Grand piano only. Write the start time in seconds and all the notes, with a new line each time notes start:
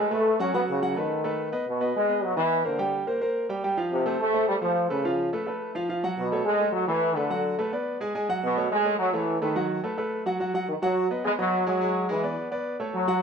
0.11 A3 A4 B4
0.40 F#3 F#4 F#5
0.54 F#3 F#4 F#5
0.82 F#3 F#4 F#5
0.96 A3 A4 B4
1.24 A3 A4 B4
1.52 B3 B4 D#5
1.80 B3 B4 D#5
2.09 B3 B4 D#5
2.37 B3 B4 D#5
2.65 A#3 A#4 C5
2.78 G3 G4 G5
3.07 A#3 A#4 C5
3.21 A#3 A#4 C5
3.49 G3 G4 G5
3.64 G3 G4 G5
3.77 F3 F4 F5
4.06 A3 A4 C5
4.34 A3 A4 C5
4.62 A3 A4 C5
4.90 A3 A4 B4
5.04 F3 F4 F5
5.33 A3 A4 B4
5.47 A3 A4 B4
5.75 F3 F4 F5
5.89 F3 F4 F5
6.03 F#3 F#4 F#5
6.32 A3 A4 C#5
6.60 A3 A4 C#5
6.88 A3 A4 C#5
7.16 A3 A4 B4
7.30 F#3 F#4 F#5
7.59 A3 A4 B4
7.72 B3 B4 D5
8.00 G#3 G#4 G#5
8.15 G#3 G#4 G#5
8.29 F#3 F#4 F#5
8.57 A3 A4 C#5
8.85 A3 A4 C#5
9.14 A3 A4 C#5
9.42 A3 A4 B4
9.56 F#3 F#4 F#5
9.84 A3 A4 B4
9.98 A3 A4 B4
10.26 F#3 F#4 F#5
10.40 F#3 F#4 F#5
10.54 F#3 F#4 F#5
10.82 F#3 F#4 F#5
11.11 B3 B4 D#5
11.24 B3 B4 D#5
11.39 B3 B4 D#5
11.67 G#3 G#4 G#5
11.81 G#3 G#4 G#5
12.09 G#3 G#4 G#5
12.23 B3 B4 D5
12.51 B3 B4 D5
12.80 A3 A4 C#5
13.08 F#3 F#4 F#5